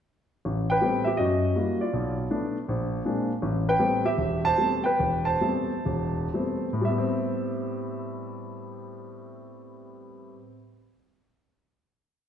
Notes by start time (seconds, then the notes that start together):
0.45 A1
0.70 B4 G5
0.81 G3 A3 B3 C4
1.04 G4 E5
1.17 F#2 F#4 D#5
1.56 G3 A#3 E4 F#4
1.81 F4 D5
1.93 B1
2.31 A3 B3 D4
2.68 A#1
3.05 G#3 A#3 C4 D4
3.42 A1
3.69 B4 G5
3.79 G3 A3 B3 C4
4.05 G4 E5
4.18 E1
4.45 C5 A5
4.58 G3 A3 B3 C4
4.84 B4 G5
4.99 E1
5.25 C5 A5
5.41 G3 A3 B3 C4
5.85 E1
6.34 G3 A3 B3 C4
6.73 A2
6.81 G3 E5
6.89 B3
6.98 C4